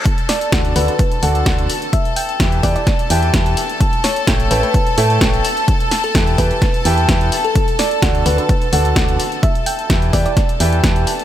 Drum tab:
HH |xxoxxxoxxxoxxxox|xxoxxxoxxxoxxxox|xxoxxxoxxxoxxxox|xxoxxxoxxxoxxxox|
SD |--o-o-------o---|----o---o---o---|--o-o-------o---|--o-o---o---o---|
BD |o---o---o---o---|o---o-o-o---o---|o---o---o---o---|o---o-o-o---o---|

HH |xxoxxxoxxxoxxxox|xxoxxxoxxxoxxxox|
SD |--o-o-------o---|----o---o---o---|
BD |o---o---o---o---|o---o-o-o---o---|